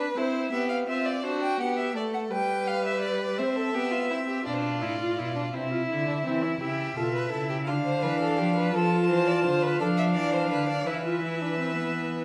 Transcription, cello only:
4.46 B2
4.82 A2
5.18 B2
5.54 C3
5.89 D3
6.25 E3
6.61 C#3
6.96 B2
7.32 C#3
7.67 D3
8.02 E3
8.38 F3
8.73 F3
9.09 E3
9.44 D3
9.79 F3
10.15 E3
10.51 D3
10.87 E3

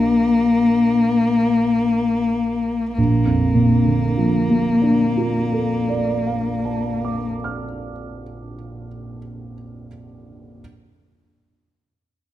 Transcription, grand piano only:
Already playing: A#1 G4 A#4 D#5 F5
2.98 A#1
3.26 F2
3.55 A#2
3.85 D3
4.17 F3
4.50 A#3
4.82 D4
5.17 F4
5.53 A4
5.89 D5
6.27 F5
6.65 A5
7.05 D6
7.44 F6

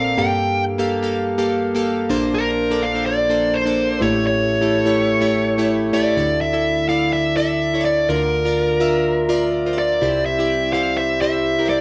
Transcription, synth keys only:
Already playing: A#1 A#2 C4 A4 A#4 C5 D5
0.17 G2 A#3 G4 A4 F5
0.78 A#3 G4 A4 F5
1.02 A#3 G4 A4 F5
1.38 A#3 G4 A4 F5
1.75 A#3 G4 A4 F5
2.09 A#1 A#2 A#3 D4 C5 A5
2.70 A#3 D4 A4 D5
2.94 A#3 D4 A4 C5
3.29 A#3 D4 A4 C5
3.65 A#3 D4 A4 D5
4.01 A1 A2 A3 E4 G4 C#5
4.61 A3 E4 G4 A4
4.85 A3 E4 G4 C#5
5.21 A3 E4 G4 C#5
5.58 A3 E4 G4 C#5
5.93 A3 E4 G4 C#5
6.16 D2 D3 E4 A4 D5
6.53 E4 A4 E5
6.88 E4 A4 D5
7.36 E4 A4 D5
7.74 E4 A4 C#5
7.81 D5
8.09 D2 D3 F4 A#4 D5
8.45 F4 A#4 D5
8.80 F4 A#4 E5
9.29 F4 A#4 D5
9.66 F4 A#4 C5
9.73 D5
10.01 C2 C3 E4 G4 C5
10.39 E4 G4 D5
10.73 E4 G4 C5
11.21 E4 G4 C5
11.59 E4 G4 A#4
11.66 C5

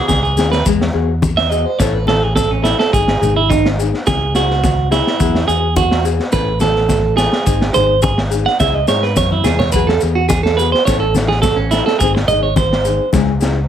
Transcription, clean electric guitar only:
0.08 G#4
0.23 G#4
0.52 B4
1.37 E5
1.50 D#5
1.66 C5
1.79 C#5
1.94 B4
2.08 A4
2.23 G#4
2.36 A4
2.51 C#4
2.64 E4
2.79 A4
2.93 G#4
3.36 E4
3.50 D#4
4.07 G#4
4.36 F#4
4.92 E4
5.48 G#4
5.77 F#4
6.33 B4
6.61 A4
7.17 G#4
7.74 C5
8.03 G#4
8.46 F#5
8.60 E5
8.74 D#5
8.88 C#5
9.03 B4
9.17 C#5
9.32 E4
9.44 G#4
9.59 C#5
9.72 B4
9.87 A4
10.15 F#4
10.29 G#4
10.43 A4
10.57 B4
10.72 C5
10.85 C#5
11.00 A4
11.28 G#4
11.42 A4
11.56 C#4
11.71 E4
11.86 A4
11.99 G#4
12.15 muted clean electric guitar stroke
12.28 D#5
12.43 C#5
12.57 C5

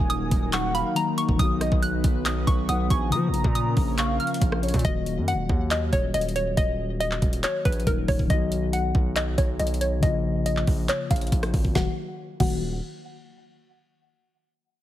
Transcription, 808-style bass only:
0.00 D#1
0.31 D#1
1.29 D#1
1.39 B1
1.72 B1
2.04 B1
2.47 B1
2.69 B1
2.90 A#1
3.12 F3
3.28 A#1
3.44 A#2
3.77 A#1
4.41 A#1
4.74 A#2
4.85 D#1
5.17 F#2
5.33 D#1
5.49 D#2
5.93 D#1
6.14 D#1
6.57 D#1
7.22 D#1
7.65 A#1
7.87 D#1
8.08 D#1
8.30 B1
8.95 B1
9.38 B1
9.60 B1
10.03 A#1
10.67 A#1
11.11 A#1
11.32 A#1
11.54 G#1
11.75 D#1
12.40 D#1

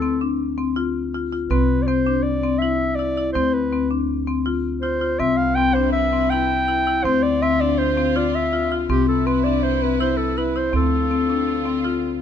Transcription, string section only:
5.20 C3 E4 B4
7.02 D3 C4 F4
8.88 C3 E4 B4
10.74 D3 C4 F4

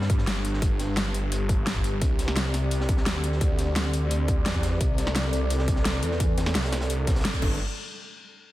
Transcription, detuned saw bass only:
Already playing: G2
0.27 G1
1.67 G1
2.02 C2
2.54 C2
3.06 D2
4.46 E2
4.81 C2
5.33 C2
5.85 C2
6.03 E2
6.55 C2
7.07 C2
7.42 G1

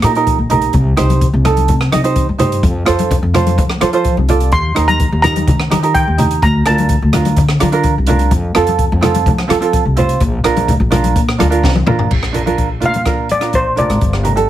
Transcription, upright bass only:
0.03 A#2
0.39 A#1
0.74 C2
0.98 C2
1.33 C2
1.69 C3
1.93 C3
2.29 G2
2.63 F2
2.88 F2
3.23 F2
3.58 F3
3.82 F3
4.17 C2
4.53 D#2
4.77 D#2
5.12 D#2
5.47 D#3
5.72 D#3
6.08 D#2
6.43 D2
6.67 D2
7.02 D2
7.37 D3
7.62 D3
7.98 C2
8.31 F2
8.56 F2
8.92 F2
9.26 F3
9.50 F3
9.85 C2
10.21 A#1
10.44 A#1
10.80 A#1
11.16 A#2
11.40 D2
11.64 C2
11.87 A#1
12.11 A#1
12.82 A#2
13.54 A#1
13.89 G#1
14.02 G1

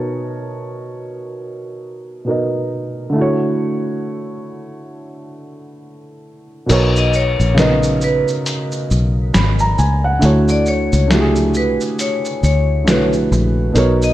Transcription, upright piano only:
Already playing: B2 B3 D#4 A#4 C#5 A5
2.24 B2 B3 D#4
2.29 A#4 D#5
3.10 D3 A3
3.15 E4 F#4
3.21 C#5
6.66 B2 B3 D#4
6.70 A#4 C#5
7.54 C#3 B3 D#4
7.59 A#4 D#5
9.34 B5
9.60 A#5
9.78 G#5
10.04 F#5
10.19 D3 A3 E4
10.24 F#4 C#5
11.08 A3 D4 E4
11.12 F#4 G4
11.20 G#4
12.84 D3 A3 E4
12.88 F#4 B4
13.72 B2 B3 D#4
13.77 A#4 C#5

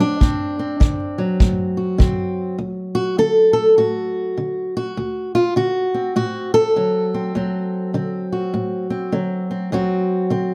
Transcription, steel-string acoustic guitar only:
Already playing: D3 C4
0.00 D4
0.21 D2 C4
0.59 C4
0.80 D3
1.18 F#3
1.40 A2
1.77 F#4
1.98 D3 C4
2.58 D2
2.95 F#4
3.18 D3 A4
3.53 A4
3.78 A2 F#4
4.38 D3
4.77 F#4
4.97 D2
5.35 F4
5.56 D3 F#4
5.94 C4
6.16 A2 F#4
6.54 A4
6.76 D3 F#3
7.14 C4
7.35 D2 F#3 C4
7.94 D3 C4
8.32 F#4
8.54 A2
8.90 C4
9.12 D3 F#3
9.51 C4
9.72 D2 F#3 C4 F#4
10.30 D3 C4

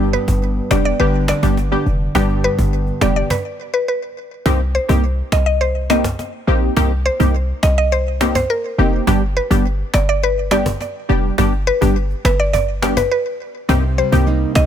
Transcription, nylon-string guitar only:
Already playing: G2 G3
0.14 B3
1.00 D3
1.29 D4
2.15 G2
2.44 B3
13.69 C3
13.98 G3
14.27 G3 A#3 D#4
14.56 D#4

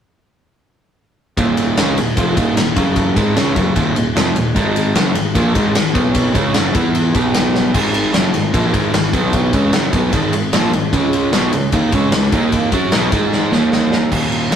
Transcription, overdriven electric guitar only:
1.38 D#2 A#2 D#3
1.78 C#3 G#3 C#4
1.98 D#2 A#2
2.17 F2 C3 F3
2.37 D#2 A#2 D#3
2.57 D#2 A#2
2.76 F#2 C#3 F#3
3.16 G#2 D#3 G#3
3.36 C#3 G#3 C#4
3.56 F#2 C#3 F#3
3.75 D#2 A#2 D#3
3.95 D#2 A#2
4.16 F2 C3 F3
4.35 D#2 A#2
4.55 G#2 D#3 G#3
4.95 F#2 C#3 F#3
5.15 G#2 D#3
5.35 A#2 F3 A#3
5.54 G#2 D#3 G#3
5.74 G#2 D#3
5.94 B2 F#3 B3
6.34 C#3 G#3 C#4
6.54 F#2 C#3 F#3
6.74 E3 B3 E4
7.15 B2 F#3 B3
7.74 G#2 D#3 G#3
8.13 F#2 C#3 F#3
8.34 G#2 D#3
8.53 A#2 F3 A#3
8.73 G#2 D#3 G#3
8.94 G#2 D#3
9.13 B2 F#3 B3
9.53 C#3 G#3 C#4
9.73 F#2 C#3 F#3
9.92 B2 F#3 B3
10.12 G#2 D#3 G#3
10.33 G#2 D#3
10.53 A#2 F3 A#3
10.73 G#2 D#3
10.93 C#3 G#3 C#4
11.32 B2 F#3 B3
11.53 C#3 G#3
11.73 D#3 A#3 D#4
11.93 C#3 G#3 C#4
12.13 C#3 G#3
12.33 D#3 A#3 D#4
12.72 F#3 C#4 F#4
12.93 B2 F#3 B3
13.12 G#3 D#4 G#4
13.52 D#3 A#3 D#4
14.12 D#2 A#2 D#3
14.51 F#2 C#3 F#3

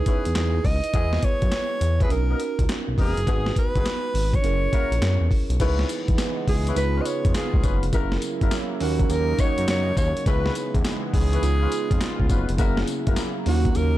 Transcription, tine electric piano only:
Already playing: D#4 E4 G#4 B4
0.93 B3 E4 G#4 B4
2.09 C#4 D4 F#4 A#4
2.17 D#4
3.26 B3 D#4 F#4 B4
4.42 C#4 E4 G#4 A#4
5.59 D#4 E4 G#4 A#4
5.68 B4
6.75 D#4 F4 G#4 B4
7.93 C#4 E4 G#4 A4
8.01 A#4
8.80 C#4 D#4 F#4 A#4
10.24 B3 D#4 E4 G#4
11.41 B3 D#4 F4 G#4
12.58 A#3 C#4 E4 G#4
13.46 A#3 C#4 D#4 E4
13.55 F#4

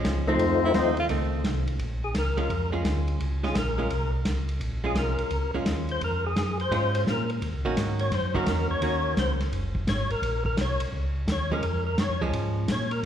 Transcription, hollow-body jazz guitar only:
Already playing: F3 G#3 C#4
0.27 D#3 A3 C4
1.10 D#3 A3 C4
2.37 G#3 C#4 F4
2.72 G#3 C#4 F4
3.43 G#3 C#4 F4
3.78 G#3 C#4 F4
4.84 G#3 C#4 F4
5.54 G#3 C#4 F4
6.72 G#3 C#4 F4
7.65 D#3 A#3 C#4 F#4
8.34 D#3 A#3 C#4 F#4
8.82 D#3 A#3 C#4 F#4
11.52 F3 G#3 C#4
12.22 F3 G#3 C#4

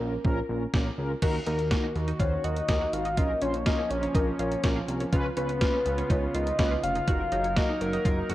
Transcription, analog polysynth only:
0.00 C#4 F4 A#4
0.25 C#4 F4 A#4
0.49 C#4 F4 A#4
0.74 C#4 F4 A#4
0.98 C#4 F4 A#4
1.22 D#4 F#4 A#4
1.47 D#4 F#4 A#4
1.71 D#4 F#4 A#4
1.96 D#4 F#4 A#4
2.20 D#4 F#4 C5
2.44 D#4 F#4 A#4
2.69 D#4 F#4 A#4
2.93 D#4 F#4 A#4
3.18 C#4 F4 A#4
3.42 C#4 F4 C5
3.66 C#4 F4 A#4
3.91 C#4 F4 A#4
4.15 C#4 F4 A#4
4.39 C#4 F4 A#4
4.64 C#4 F4 A#4
4.88 C#4 F4 A#4
5.13 C#4 F4 B4
5.37 C#4 F4 B4
5.61 C#4 F4 B4
5.86 C#4 F4 B4
6.10 C#4 F4 B4
6.35 C#4 F4 A#4
6.59 C#4 F4 B4
6.83 C#4 F4 C#5
7.08 D#4 F#4 A#4
7.32 D#4 F#4 C#5
7.56 D#4 F#4 A#4
7.81 D#4 F#4 A#4
8.05 D#4 F#4 A#4
8.30 D#4 F#4 G#4

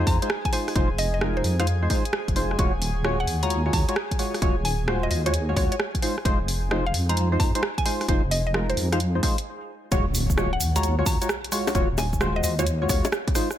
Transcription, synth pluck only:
0.07 A#5
0.45 G#5
0.53 G#5
0.99 D#5
1.14 D#5
1.37 C5
1.60 F5
3.20 F#5
3.43 A#5
3.73 A#5
4.65 G#5
5.03 D#5
5.11 D#5
5.26 C#5
5.57 C#5
5.72 C#5
6.86 F5
7.09 A#5
7.40 A#5
7.78 G#5
7.86 G#5
8.31 D#5
8.47 D#5
8.70 C5
8.92 F5
10.53 F#5
10.76 A#5
11.06 A#5
11.98 G#5
12.36 D#5
12.44 D#5
12.59 C#5
12.90 C#5
13.05 C#5

